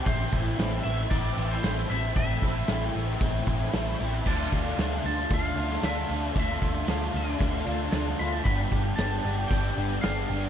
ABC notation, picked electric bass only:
X:1
M:4/4
L:1/8
Q:1/4=114
K:Am
V:1 name="Picked electric bass" clef=bass
A,,, A,,, A,,, A,,, A,,, A,,, A,,, A,,, | A,,, A,,, A,,, A,,, A,,, A,,, A,,, A,,, | D,, D,, D,, D,, D,, D,, D,, D,, | D,, D,, D,, D,, D,, D,, D,, D,, |
G,,, G,,, G,,, G,,, G,,, G,,, G,,, G,,, |]